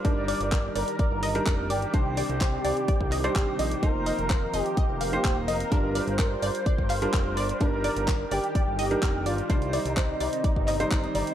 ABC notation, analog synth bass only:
X:1
M:4/4
L:1/16
Q:1/4=127
K:Eblyd
V:1 name="Analog synth bass" clef=bass
G,,,2 z G,,,2 z G,,, z2 G,,,2 z F,,,2 G,,, z | C,,2 z C,,2 z C,, z2 C,,2 z G,,, z B,,, z | F,,,2 z F,,,2 z F,,, z2 F,,,2 z E,,,2 F,,, z | G,,,2 z G,,,2 z G,,, z2 G,,,2 z F,,,2 G,,, z |
G,,,2 z G,,,2 z G,,, z2 G,,,2 z F,,,2 G,,, z | C,,2 z C,,2 z C,, z2 G,,,2 z G,,, z G,,, z |]